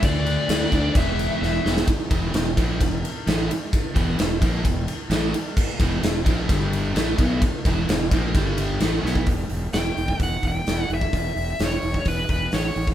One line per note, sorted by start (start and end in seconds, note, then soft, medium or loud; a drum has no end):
0.02 0.36 D2 medium
0.02 0.70 D3 medium
0.02 0.71 A3 medium
0.02 0.70 D4 loud
0.02 0.97 D5 loud
0.02 kick loud
0.02 crash medium
0.26 crash medium
0.48 0.65 D2 medium
0.48 snare loud
0.48 crash medium
0.71 0.89 D2 medium
0.71 0.95 D3 medium
0.71 0.94 A3 medium
0.71 0.94 D4 medium
0.71 kick medium
0.71 crash medium
0.95 1.28 E1 medium
0.95 1.63 E2 medium
0.95 1.64 B2 medium
0.95 1.65 E3 loud
0.95 1.39 E5 medium
0.95 kick loud
0.95 crash medium
1.19 crash medium
1.41 1.58 E1 medium
1.41 1.74 E5 medium
1.41 snare medium
1.65 1.81 E1 medium
1.65 1.89 E2 medium
1.65 1.88 B2 medium
1.65 1.87 E3 loud
1.65 snare loud
1.77 snare loud
1.88 kick loud
1.88 ride loud
2.11 2.32 E1 medium
2.11 2.33 E2 loud
2.11 2.33 B2 loud
2.11 2.34 E3 loud
2.11 kick loud
2.11 ride medium
2.34 2.56 E1 medium
2.34 2.53 E2 medium
2.34 2.53 B2 medium
2.34 snare loud
2.34 ride loud
2.57 2.79 A#1 medium
2.57 2.79 A#2 medium
2.57 2.80 F3 medium
2.57 2.80 A#3 medium
2.57 kick loud
2.57 ride medium
2.80 3.02 E1 medium
2.80 2.99 E2 medium
2.80 2.99 B2 medium
2.80 kick medium
2.80 ride loud
3.05 ride medium
3.27 3.48 A1 medium
3.27 3.49 A2 medium
3.27 3.49 E3 loud
3.27 3.49 A3 loud
3.27 snare loud
3.27 ride medium
3.50 muted overdriven electric guitar stroke medium
3.50 muted fingered electric bass stroke soft
3.50 ride medium
3.73 kick loud
3.73 ride medium
3.94 4.17 E1 medium
3.94 4.17 E2 medium
3.94 4.18 B2 medium
3.94 4.18 E3 loud
3.94 kick loud
3.94 ride medium
4.18 4.40 E1 medium
4.18 4.37 E2 medium
4.18 4.37 B2 medium
4.18 snare loud
4.18 ride loud
4.41 4.63 A#1 loud
4.41 4.64 A#2 medium
4.41 4.64 F3 loud
4.41 4.64 A#3 loud
4.41 kick loud
4.41 ride medium
4.65 4.86 E1 medium
4.65 4.83 E2 medium
4.65 4.83 B2 medium
4.65 kick medium
4.65 ride loud
4.88 ride medium
5.10 5.32 A1 medium
5.10 5.33 A2 medium
5.10 5.34 E3 loud
5.10 5.34 A3 loud
5.10 snare loud
5.10 ride loud
5.33 muted fingered electric bass stroke soft
5.33 muted overdriven electric guitar stroke medium
5.33 ride medium
5.57 kick loud
5.57 crash loud
5.80 6.02 E1 medium
5.80 6.02 E2 medium
5.80 6.02 B2 loud
5.80 6.03 E3 loud
5.80 kick loud
5.80 ride medium
6.02 6.24 E1 medium
6.02 6.22 E2 medium
6.02 6.22 B2 medium
6.02 snare loud
6.02 ride loud
6.25 6.47 A#1 medium
6.25 6.48 A#2 medium
6.25 6.48 F3 loud
6.25 6.48 A#3 loud
6.25 kick loud
6.25 ride medium
6.49 6.92 G1 loud
6.49 6.95 G2 loud
6.49 6.94 D3 loud
6.49 6.94 G3 loud
6.49 kick loud
6.49 ride loud
6.73 ride medium
6.94 7.17 A1 medium
6.94 7.17 A2 loud
6.94 7.18 E3 medium
6.94 7.18 A3 loud
6.94 snare loud
6.94 ride medium
7.18 7.40 B1 loud
7.18 7.41 B2 loud
7.18 7.42 F#3 loud
7.18 7.42 B3 loud
7.18 kick loud
7.18 ride medium
7.42 kick loud
7.42 ride loud
7.65 7.87 E1 medium
7.65 7.88 E2 medium
7.65 7.88 B2 loud
7.65 7.88 E3 loud
7.65 kick loud
7.65 ride medium
7.89 8.10 E1 medium
7.89 8.08 E2 medium
7.89 8.07 B2 medium
7.89 snare loud
7.89 ride medium
8.11 8.33 A#1 medium
8.11 8.34 A#2 medium
8.11 8.35 F3 medium
8.11 8.35 A#3 loud
8.11 kick loud
8.11 ride medium
8.35 8.78 G1 medium
8.35 8.80 G2 medium
8.35 8.80 D3 loud
8.35 8.81 G3 loud
8.35 kick loud
8.35 ride loud
8.58 ride medium
8.80 9.02 A1 loud
8.80 9.02 A2 medium
8.80 9.02 E3 medium
8.80 9.03 A3 medium
8.80 snare loud
8.80 ride loud
9.03 9.25 B1 loud
9.03 9.26 B2 loud
9.03 9.26 F#3 medium
9.03 9.26 B3 loud
9.03 snare medium
9.15 kick medium
9.26 9.44 E1 medium
9.26 kick loud
9.26 open hi-hat medium
9.49 9.67 E1 medium
9.49 open hi-hat medium
9.73 9.90 E1 medium
9.73 10.17 G5 medium
9.73 snare loud
9.73 open hi-hat medium
9.96 10.13 E1 medium
9.96 open hi-hat soft
10.08 kick medium
10.20 10.37 E1 medium
10.20 10.43 F#5 medium
10.20 kick medium
10.20 open hi-hat medium
10.43 10.60 E1 medium
10.43 kick medium
10.43 open hi-hat medium
10.48 10.79 G5 loud
10.67 10.84 E1 medium
10.67 snare loud
10.67 open hi-hat medium
10.79 10.89 F#5 loud
10.90 11.07 E1 medium
10.90 open hi-hat soft
10.94 11.64 E5 medium
11.01 kick medium
11.13 11.30 E1 medium
11.13 kick medium
11.13 open hi-hat medium
11.36 11.53 E1 medium
11.36 open hi-hat medium
11.59 11.76 E1 medium
11.59 snare loud
11.59 open hi-hat medium
11.64 12.05 C#5 medium
11.83 11.99 E1 medium
11.83 open hi-hat soft
11.94 kick medium
12.05 12.23 E1 medium
12.05 12.29 B4 medium
12.05 kick medium
12.05 open hi-hat medium
12.29 12.46 E1 medium
12.29 12.52 B4 medium
12.29 kick medium
12.29 open hi-hat medium
12.52 12.69 A1 medium
12.52 12.86 C#5 medium
12.52 snare medium
12.52 open hi-hat medium
12.76 12.93 A1 medium
12.76 open hi-hat medium
12.87 kick medium